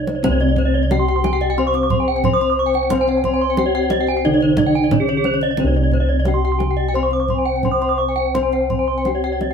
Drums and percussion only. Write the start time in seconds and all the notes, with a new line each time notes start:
0.07 kendang high
0.24 kendang high, kendang low
0.40 kendang slap
0.56 kendang slap, kendang low
0.91 kendang slap, kendang high
1.24 kendang high
1.41 kendang slap
1.74 kendang slap
1.90 kendang slap, kendang low
2.24 kendang slap, kendang low
2.41 kendang slap
2.74 kendang slap
2.90 kendang high, kendang low
3.07 kendang slap
3.24 kendang slap, kendang low
3.57 kendang slap, kendang high
3.90 kendang high
4.07 kendang slap
4.41 kendang slap
4.57 kendang slap, kendang high, kendang low
4.91 kendang slap, kendang high, kendang low
5.08 kendang slap
5.24 kendang high
5.41 kendang slap
5.57 kendang high, kendang low
5.74 kendang slap
5.91 kendang slap, kendang low
6.25 kendang slap, kendang high
6.60 kendang high
6.77 kendang slap
7.11 kendang slap
7.28 kendang slap, kendang low
7.63 kendang slap, kendang low
7.81 kendang slap
8.18 kendang slap
8.35 kendang high, kendang low
8.53 kendang slap
8.70 kendang slap, kendang low
9.05 kendang slap, kendang high
9.41 kendang slap, kendang high